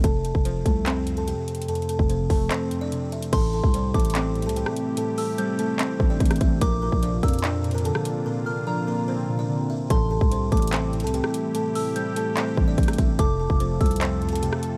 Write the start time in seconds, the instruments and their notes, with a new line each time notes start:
0.04 808-style bass F1, synth keys F2, kalimba A4 A5, kick, closed hi-hat
0.24 kalimba A4 A5, closed hi-hat
0.35 808-style bass F1, kick
0.45 synth keys F3, kalimba C4 C5, closed hi-hat
0.66 808-style bass C2, synth keys A3, kalimba A4 A5, kick, closed hi-hat
0.86 synth keys C4, kalimba C4, clap, closed hi-hat
1.07 synth keys F2, closed hi-hat
1.17 kalimba A4 A5, closed hi-hat
1.27 synth keys C3, kalimba G4 G5, closed hi-hat
1.48 closed hi-hat
1.55 closed hi-hat
1.62 closed hi-hat
1.68 synth keys F2, kalimba A4 A5, closed hi-hat
1.75 closed hi-hat
1.82 closed hi-hat
1.89 kalimba A4 A5, closed hi-hat
1.99 808-style bass F1, kick
2.09 synth keys F3, kalimba C4 C5, closed hi-hat
2.30 808-style bass F1, synth keys A3, kalimba A4 A5, kick, open hi-hat
2.50 synth keys C4, kalimba C4 C5, clap, closed hi-hat
2.71 synth keys F2, closed hi-hat
2.81 kalimba D4 D5
2.92 synth keys C3, closed hi-hat
3.12 kalimba E4 E5, closed hi-hat
3.23 closed hi-hat
3.33 808-style bass A1, synth keys A2, analog synth pad C3 A3 E4 G4, kalimba A4 A5, synth bell C6, kick, closed hi-hat, crash
3.53 kalimba A4 A5
3.64 808-style bass C2, kick
3.74 synth keys G3, kalimba C4 C5, closed hi-hat
3.94 808-style bass A1, synth keys A3, kalimba A4 A5, synth bell D6, kick, closed hi-hat
4.00 closed hi-hat
4.05 closed hi-hat
4.10 closed hi-hat
4.15 synth keys C4, kalimba C4 C5, clap, closed hi-hat
4.35 synth keys A2, closed hi-hat
4.42 808-style bass C2, kalimba A4, closed hi-hat
4.47 kalimba A5, closed hi-hat
4.56 synth keys E3, kalimba G4 G5, closed hi-hat
4.66 cross-stick
4.76 closed hi-hat
4.97 synth keys A2, kalimba A4 A5, closed hi-hat
5.18 kalimba A4 A5, synth bell E6, open hi-hat
5.38 synth keys G3, kalimba C4 C5, synth bell G6, closed hi-hat
5.59 synth keys A3, kalimba A4 A5, closed hi-hat
5.79 synth keys C4, kalimba C4 C5, clap, closed hi-hat
6.00 808-style bass A1, synth keys A2, kick
6.10 kalimba D4 D5
6.20 808-style bass A1, synth keys E3, kick, closed hi-hat
6.26 closed hi-hat
6.31 cross-stick, closed hi-hat
6.36 closed hi-hat
6.41 808-style bass A1, kalimba E4 E5, kick, closed hi-hat
6.61 808-style bass A#1, synth keys A#2, analog synth pad A#3 D4 F4, kalimba A#4 A#5, synth bell D6, kick, closed hi-hat
6.82 kalimba A#4 A#5
6.92 808-style bass A#1, kick
7.02 synth keys F3, kalimba D4 D5, closed hi-hat
7.23 808-style bass F2, synth keys A#3, kalimba A#4 A#5, synth bell E6, kick, closed hi-hat
7.28 closed hi-hat
7.33 closed hi-hat
7.39 closed hi-hat
7.44 synth keys C4, kalimba D4 D5, clap, closed hi-hat
7.64 synth keys A#2, closed hi-hat
7.71 kalimba A#4, closed hi-hat
7.75 kalimba A#5, closed hi-hat
7.85 synth keys D3, kalimba A4 A5, closed hi-hat
7.95 cross-stick
8.05 closed hi-hat
8.26 synth keys A#2, kalimba A#4 A#5
8.46 kalimba A#4 A#5, synth bell F6
8.67 synth keys F3, kalimba D4 D5, synth bell A#5
8.87 synth keys A#3, kalimba A#4 A#5
9.08 synth keys C4, kalimba C4 C5
9.29 synth keys A#2
9.39 kalimba D4 D5
9.49 synth keys D3
9.70 kalimba E4 E5
9.90 808-style bass A1, synth keys A2, analog synth pad A3 E4 G4, kalimba A4 A5, synth bell C6, kick, closed hi-hat
10.11 kalimba A4 A5
10.21 808-style bass C2, kick
10.31 synth keys G3, kalimba C4 C5, closed hi-hat
10.52 808-style bass A1, synth keys A3, kalimba A4 A5, synth bell D6, kick, closed hi-hat
10.57 closed hi-hat
10.62 closed hi-hat
10.67 closed hi-hat
10.72 synth keys C4, kalimba C4 C5, clap, closed hi-hat
10.93 synth keys A2, closed hi-hat
11.00 808-style bass C2, kalimba A4, closed hi-hat
11.04 kalimba A5, closed hi-hat
11.13 synth keys E3, kalimba G4 G5, closed hi-hat
11.24 cross-stick
11.34 closed hi-hat
11.54 synth keys A2, kalimba A4 A5, closed hi-hat
11.75 kalimba A4 A5, synth bell E6, open hi-hat
11.96 synth keys G3, kalimba C4 C5, synth bell G6, closed hi-hat
12.16 synth keys A3, kalimba A4 A5, closed hi-hat
12.37 synth keys C4, kalimba C4 C5, clap, closed hi-hat
12.57 808-style bass A1, synth keys A2, kick
12.68 kalimba D4 D5
12.78 808-style bass A1, synth keys E3, kick, closed hi-hat
12.83 closed hi-hat
12.88 cross-stick, closed hi-hat
12.93 closed hi-hat
12.98 808-style bass A1, kalimba E4 E5, kick, closed hi-hat
13.19 808-style bass F1, synth keys F2, analog synth pad C3 F4 A4, kalimba A4 A5, synth bell D6, kick, closed hi-hat
13.40 kalimba A4 A5
13.50 808-style bass F1, kick
13.60 synth keys F3, kalimba C4 C5, closed hi-hat
13.81 808-style bass C2, synth keys A3, kalimba A4 A5, synth bell E6, kick, closed hi-hat
13.86 closed hi-hat
13.91 closed hi-hat
13.96 closed hi-hat
14.01 synth keys C4, kalimba C4 C5, clap, closed hi-hat
14.22 synth keys F2, closed hi-hat
14.29 kalimba A4, closed hi-hat
14.33 kalimba A5, closed hi-hat
14.42 synth keys C3, kalimba G4 G5, closed hi-hat
14.53 cross-stick
14.63 closed hi-hat